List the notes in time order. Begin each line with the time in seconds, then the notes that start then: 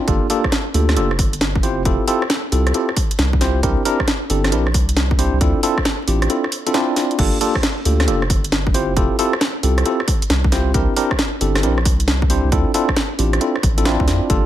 0.08 G1 A#3 D4 F4 G4 A4, kick, closed hi-hat
0.30 A#3 D4 F4 G4 A4, open hi-hat
0.44 kick, cross-stick
0.52 snare, closed hi-hat
0.74 D2 A#3 D4 F4 G4 A4, open hi-hat
0.89 cross-stick, snare, closed hi-hat
0.96 F1 A#3 D4 F4 G4 A4, closed hi-hat
1.11 cross-stick
1.19 G1, kick, open hi-hat
1.33 closed hi-hat
1.41 snare, closed hi-hat
1.55 kick
1.63 C4 E4 F4 G4 C5, open hi-hat
1.78 F1
1.85 F1 C4 E4 F4 G4 A4, kick, closed hi-hat
2.08 C4 E4 F4 G4 A4, open hi-hat
2.22 cross-stick
2.30 snare, closed hi-hat
2.52 C2 C4 E4 F4 G4 A4, open hi-hat
2.67 cross-stick, closed hi-hat
2.74 C4 E4 F4 G4 A4, closed hi-hat
2.89 cross-stick
2.96 kick, open hi-hat
3.11 closed hi-hat
3.19 C2, snare, closed hi-hat
3.33 kick
3.41 C4 E4 F4 G4 C5, snare, open hi-hat
3.63 C2 C4 D4 E4 G4 A#4, kick, closed hi-hat
3.85 C4 D4 E4 G4 A#4, open hi-hat
4.00 kick, cross-stick
4.08 snare, closed hi-hat
4.30 G1 C4 D4 E4 G4 A4, open hi-hat
4.44 cross-stick, snare, closed hi-hat
4.52 A#1 C4 D4 E4 G4 A#4, closed hi-hat
4.67 cross-stick
4.74 C2, kick, open hi-hat
4.89 closed hi-hat
4.97 snare, closed hi-hat
5.11 kick
5.19 C4 D4 E4 G4 C5, open hi-hat
5.33 C2
5.41 D2 C4 D4 E4 F4 A4, kick, closed hi-hat
5.63 C4 D4 E4 F4 A4, open hi-hat
5.78 kick, cross-stick
5.85 snare, closed hi-hat
6.08 A1 C4 D4 E4 F4 G4, open hi-hat
6.22 cross-stick, closed hi-hat
6.30 C4 D4 E4 F4 A4, closed hi-hat
6.44 cross-stick
6.52 open hi-hat
6.67 C4 D4 E4 F4 A4, closed hi-hat
6.74 C4 D4 E4 F4 D5, snare, closed hi-hat
6.96 snare, open hi-hat
7.11 closed hi-hat
7.19 G1 A#3 D4 F4 G4 A4, kick, closed hi-hat, crash
7.41 A#3 D4 F4 G4 A4, open hi-hat
7.55 kick, cross-stick
7.63 snare, closed hi-hat
7.85 D2 A#3 D4 F4 G4 A4, open hi-hat
8.00 cross-stick, snare, closed hi-hat
8.08 F1 A#3 D4 F4 G4 A4, closed hi-hat
8.22 cross-stick
8.30 G1, kick, open hi-hat
8.44 closed hi-hat
8.52 snare, closed hi-hat
8.67 kick
8.74 C4 E4 F4 G4 C5, open hi-hat
8.89 F1
8.97 F1 C4 E4 F4 G4 A4, kick, closed hi-hat
9.19 C4 E4 F4 G4 A4, open hi-hat
9.33 cross-stick
9.41 snare, closed hi-hat
9.63 C2 C4 E4 F4 G4 A4, open hi-hat
9.78 cross-stick, closed hi-hat
9.86 C4 E4 F4 G4 A4, closed hi-hat
10.00 cross-stick
10.08 kick, open hi-hat
10.22 closed hi-hat
10.30 C2, snare, closed hi-hat
10.44 kick
10.52 C4 E4 F4 G4 C5, snare, open hi-hat
10.74 C2 C4 D4 E4 G4 A#4, kick, closed hi-hat
10.97 C4 D4 E4 G4 A#4, open hi-hat
11.11 kick, cross-stick
11.19 snare, closed hi-hat
11.41 G1 C4 D4 E4 G4 A4, open hi-hat
11.55 cross-stick, snare, closed hi-hat
11.63 A#1 C4 D4 E4 G4 A#4, closed hi-hat
11.78 cross-stick
11.85 C2, kick, open hi-hat
12.00 closed hi-hat
12.08 snare, closed hi-hat
12.22 kick
12.30 C4 D4 E4 G4 C5, open hi-hat
12.44 C2
12.52 D2 C4 D4 E4 F4 A4, kick, closed hi-hat
12.74 C4 D4 E4 F4 A4, open hi-hat
12.89 kick, cross-stick
12.97 snare, closed hi-hat
13.19 A1 C4 D4 E4 F4 G4, open hi-hat
13.33 cross-stick, closed hi-hat
13.41 C4 D4 E4 F4 A4, closed hi-hat
13.56 cross-stick
13.63 A1, kick, open hi-hat
13.78 C4 D4 E4 F4 A4, closed hi-hat
13.85 C4 D4 E4 F4 D5, snare, closed hi-hat
14.00 D2, kick
14.08 F2, snare, open hi-hat
14.30 G1 A#3 D4 F4 G4 A4, kick, closed hi-hat